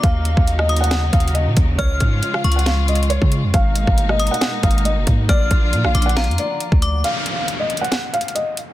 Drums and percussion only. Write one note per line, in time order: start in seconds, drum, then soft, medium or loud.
0.04 kick loud
0.04 closed hi-hat medium
0.25 closed hi-hat medium
0.37 kick loud
0.47 closed hi-hat medium
0.59 cross-stick loud
0.69 closed hi-hat medium
0.77 closed hi-hat medium
0.84 closed hi-hat medium
0.91 snare loud
0.91 closed hi-hat medium
1.13 kick loud
1.13 closed hi-hat medium
1.20 closed hi-hat medium
1.28 closed hi-hat medium
1.35 closed hi-hat medium
1.57 kick loud
1.57 closed hi-hat medium
1.79 kick loud
1.79 closed hi-hat medium
2.00 kick medium
2.00 closed hi-hat medium
2.23 closed hi-hat medium
2.34 cross-stick loud
2.44 closed hi-hat medium
2.44 open hi-hat medium
2.52 closed hi-hat medium
2.59 closed hi-hat medium
2.66 snare loud
2.66 closed hi-hat medium
2.88 closed hi-hat medium
2.95 closed hi-hat medium
3.03 closed hi-hat medium
3.10 closed hi-hat medium
3.22 kick loud
3.32 closed hi-hat medium
3.54 kick loud
3.54 closed hi-hat medium
3.76 closed hi-hat medium
3.87 kick loud
3.98 closed hi-hat medium
4.09 cross-stick medium
4.20 closed hi-hat medium
4.27 closed hi-hat medium
4.34 closed hi-hat medium
4.41 snare loud
4.41 closed hi-hat medium
4.63 kick medium
4.63 closed hi-hat medium
4.71 closed hi-hat medium
4.78 closed hi-hat medium
4.85 closed hi-hat medium
5.07 kick loud
5.07 closed hi-hat medium
5.29 kick loud
5.29 closed hi-hat medium
5.51 kick loud
5.51 closed hi-hat medium
5.73 closed hi-hat medium
5.85 cross-stick loud
5.95 closed hi-hat medium
5.95 open hi-hat medium
6.02 closed hi-hat medium
6.09 closed hi-hat medium
6.17 snare loud
6.17 closed hi-hat medium
6.24 closed hi-hat medium
6.31 closed hi-hat soft
6.38 closed hi-hat medium
6.60 closed hi-hat medium
6.72 kick loud
6.82 closed hi-hat medium
7.04 closed hi-hat medium
7.26 closed hi-hat medium
7.48 closed hi-hat medium
7.70 closed hi-hat medium
7.77 closed hi-hat medium
7.85 closed hi-hat medium
7.92 snare loud
7.92 closed hi-hat medium
8.14 closed hi-hat medium
8.21 closed hi-hat medium
8.28 closed hi-hat medium
8.36 closed hi-hat medium
8.57 closed hi-hat medium